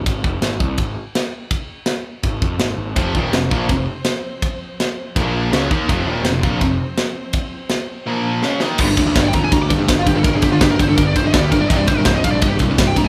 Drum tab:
CC |--------|--------|--------|--------|
RD |b-b-b-b-|b-b-b-b-|b-b-b-b-|b-b-b-b-|
SD |--o---o-|--o---o-|--o---o-|--o---o-|
BD |oo-oo---|o---oo--|oo-oo---|o---o--o|

CC |--------|--------|x-------|--------|
RD |b-b-b-b-|b-b-----|-xxxxxxx|xxxxxxxx|
SD |--o---o-|--o---oo|--o---o-|--o---o-|
BD |o--oo---|o-------|oooooooo|oooooooo|

CC |--------|
RD |xxxxxxxx|
SD |--o---o-|
BD |oooooooo|